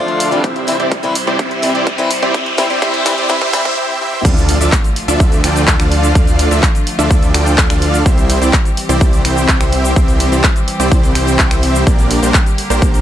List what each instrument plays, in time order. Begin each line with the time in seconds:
Already playing: string section D3 A3 F4 D5, steel-string acoustic guitar F3 A3 D4 F4, riser
0.08 supersaw synth D4 F4 A4 D5 F5, closed hi-hat
0.20 open hi-hat
0.31 steel-string acoustic guitar E3 G3 C4 E4, closed hi-hat
0.44 string section C3 G3 E4 C5, supersaw synth C4 E4 G4 C5 E5, kick, closed hi-hat
0.56 closed hi-hat
0.67 steel-string acoustic guitar E3 G3 C4 E4, open hi-hat
0.80 supersaw synth C4 E4 G4 C5 D5, closed hi-hat
0.92 kick, closed hi-hat
1.03 steel-string acoustic guitar E3 G3 C4 E4, closed hi-hat
1.15 open hi-hat
1.27 supersaw synth C4 E4 G4 C5 D5, closed hi-hat
1.39 supersaw synth C4 E4 G4 C5 E5, kick, closed hi-hat
1.51 closed hi-hat
1.62 steel-string acoustic guitar E3 G3 C4 E4, open hi-hat
1.75 supersaw synth C4 E4 G4 C5 D5, closed hi-hat
1.87 kick, closed hi-hat
1.98 steel-string acoustic guitar E3 G3 C4 E4, closed hi-hat
2.11 open hi-hat
2.22 supersaw synth C4 E4 G4 C5 D5, closed hi-hat
2.34 supersaw synth C4 E4 G4 C5 E5, kick, closed hi-hat
2.46 closed hi-hat
2.58 steel-string acoustic guitar E3 G3 C4 E4, kick, open hi-hat
2.70 supersaw synth C4 E4 G4 C5 D5, closed hi-hat
2.82 supersaw synth C4 E4 G4 C5 E5, kick, closed hi-hat
2.94 closed hi-hat
3.05 steel-string acoustic guitar E3 G3 C4 E4, kick, open hi-hat
3.18 supersaw synth C4 E4 G4 C5 D5, closed hi-hat
3.29 steel-string acoustic guitar E3 G3 C4 E4, supersaw synth C4 E4 G4 C5 E5, kick, closed hi-hat
3.42 kick, closed hi-hat
3.53 steel-string acoustic guitar E3 G3 C4 E4, supersaw synth C4 E4 G4 C5 E5, kick, open hi-hat
3.65 kick, closed hi-hat
3.77 supersaw synth C4 E4 G4 C5 E5
4.01 supersaw synth C4 E4 G4 C5 E5, high tom
4.13 mid tom
4.25 detuned saw bass D2, string section D3 F3 A3 F4, supersaw synth D4 F4 A4 D5 F5, kick, closed hi-hat, crash, impact, shaker
4.37 closed hi-hat, shaker
4.49 open hi-hat
4.61 detuned saw bass D2, supersaw synth D4 F4 A4 D5 E5, closed hi-hat, shaker
4.72 kick, clap, closed hi-hat, shaker
4.84 closed hi-hat, shaker
4.96 open hi-hat
5.08 detuned saw bass D2, supersaw synth D4 F4 A4 D5 E5, closed hi-hat, shaker
5.20 kick, closed hi-hat, shaker
5.32 closed hi-hat, shaker
5.44 detuned saw bass D2, supersaw synth D4 F4 A4 D5 G5, finger snap, open hi-hat
5.56 closed hi-hat, shaker
5.68 kick, clap, closed hi-hat, shaker
5.80 detuned saw bass D2, supersaw synth D4 F4 A4 D5 F5, finger snap, closed hi-hat, shaker
5.92 open hi-hat
6.03 closed hi-hat, shaker
6.15 detuned saw bass D2, supersaw synth D4 F4 A4 D5 F5, kick, closed hi-hat, shaker
6.27 closed hi-hat, shaker
6.39 open hi-hat
6.51 detuned saw bass D2, supersaw synth D4 F4 A4 D5 E5, closed hi-hat, shaker
6.63 kick, clap, closed hi-hat, shaker
6.75 closed hi-hat, shaker
6.87 open hi-hat
6.99 detuned saw bass D2, supersaw synth D4 F4 A4 D5 E5, closed hi-hat, shaker
7.11 kick, closed hi-hat, shaker
7.23 closed hi-hat, shaker
7.34 detuned saw bass D2, supersaw synth D4 F4 A4 D5 G5, finger snap, open hi-hat
7.46 closed hi-hat, shaker
7.58 kick, clap, closed hi-hat, shaker
7.70 detuned saw bass D2, supersaw synth D4 F4 A4 D5 F5, finger snap, closed hi-hat, shaker
7.82 open hi-hat
7.94 closed hi-hat, shaker
8.06 detuned saw bass C2, string section E3 G3 C4 G4, supersaw synth C4 E4 G4 C5 E5, kick, closed hi-hat, shaker
8.18 closed hi-hat, shaker
8.30 open hi-hat
8.42 detuned saw bass C2, supersaw synth C4 E4 G4 C5 D5, closed hi-hat, shaker
8.53 kick, clap, closed hi-hat, shaker
8.65 closed hi-hat, shaker
8.77 open hi-hat
8.89 detuned saw bass C2, supersaw synth C4 E4 G4 C5 D5, closed hi-hat, shaker
9.01 kick, closed hi-hat, shaker
9.13 closed hi-hat, shaker
9.25 detuned saw bass C2, supersaw synth C4 E4 G4 C5 G5, finger snap, open hi-hat
9.37 closed hi-hat, shaker
9.48 kick, clap, closed hi-hat, shaker
9.61 detuned saw bass C2, supersaw synth C4 E4 G4 C5 E5, finger snap, closed hi-hat, shaker
9.73 open hi-hat
9.84 closed hi-hat, shaker
9.96 detuned saw bass C2, supersaw synth C4 E4 G4 E5, kick, closed hi-hat, shaker
10.08 closed hi-hat, shaker
10.20 open hi-hat
10.32 detuned saw bass C2, supersaw synth C4 E4 G4 C5 D5, closed hi-hat, shaker
10.44 kick, clap, closed hi-hat, shaker
10.56 closed hi-hat, shaker
10.68 open hi-hat
10.80 detuned saw bass C2, supersaw synth C4 E4 G4 C5 D5, closed hi-hat, shaker
10.92 kick, closed hi-hat, shaker
11.03 closed hi-hat, shaker
11.15 detuned saw bass C2, supersaw synth C4 E4 G4 C5 G5, finger snap, open hi-hat
11.27 closed hi-hat, shaker
11.39 kick, clap, closed hi-hat, shaker
11.51 detuned saw bass C2, supersaw synth C4 E4 G4 C5 E5, finger snap, closed hi-hat, shaker
11.63 open hi-hat
11.75 closed hi-hat, shaker
11.87 detuned saw bass A#1, string section D3 A#3, supersaw synth A#3 D4 G4 A#4 D5, kick, closed hi-hat, shaker
11.99 closed hi-hat, shaker
12.11 open hi-hat
12.22 detuned saw bass A#1, supersaw synth A#3 D4 G4 A#4 C5, closed hi-hat, shaker
12.34 kick, clap, closed hi-hat, shaker
12.46 closed hi-hat, shaker
12.58 open hi-hat
12.70 detuned saw bass A#1, supersaw synth A#3 D4 G4 A#4 C5, closed hi-hat, shaker
12.82 kick, closed hi-hat, shaker
12.94 closed hi-hat, shaker